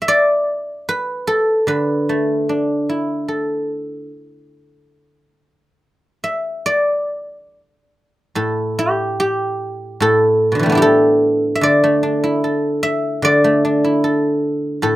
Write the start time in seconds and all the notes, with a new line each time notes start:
0.02 E5
0.08 D5
0.89 B4
1.27 A4
1.67 D3 B4
2.09 A3
2.31 C5
2.49 D4
2.63 C#5
2.89 E4
2.95 D5
3.28 A4
6.24 E5
6.66 D5
8.35 A2 A4
8.79 G4
9.20 G4
10.00 A2 A4
10.52 B2 D3
10.59 E3 G3
10.66 A3 B3
10.72 D4 E4
10.77 G4
10.82 A4
11.55 E5
11.61 D3 D5
11.84 A3
12.03 D4
12.24 E4
12.44 A4
12.83 E5
13.22 D3 D5
13.44 A3
13.65 D4
13.84 E4
14.04 A4
14.82 A2 A4